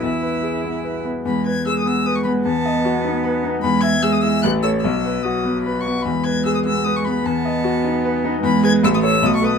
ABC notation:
X:1
M:3/4
L:1/16
Q:1/4=151
K:E
V:1 name="Violin"
e'8- e'2 z2 | b2 g'2 e' d' e'2 d' c' b2 | a8- a2 z2 | b2 g'2 e' d' e'2 f'2 e'2 |
e'4 d'4 b2 c'2 | b2 g'2 e' d' e'2 d' c' b2 | a8- a2 z2 | b2 g'2 e' d' e'2 d' c' d'2 |]
V:2 name="Grand piano"
E,,2 B2 G2 B,2 B2 B,2 | E,,2 B2 G2 B,2 B2 B,2 | E,,2 d2 F2 D2 B2 D2 | E,,2 e2 G2 E2 A,,,2 [Ac]2 |
B,,,2 B2 F2 B,2 B2 B,2 | E,,2 B2 G2 B,2 B2 B,2 | E,,2 d2 F2 D2 B2 D2 | E,,2 [GB]2 A,,,2 [Ac]2 B,,,2 [AB]2 |]
V:3 name="Cello" clef=bass
E8- E2 z2 | G,4 G,8 | B,12 | G,4 G,4 A,4 |
F,4 F,6 z2 | G,12 | B,12 | G,4 A,4 A,4 |]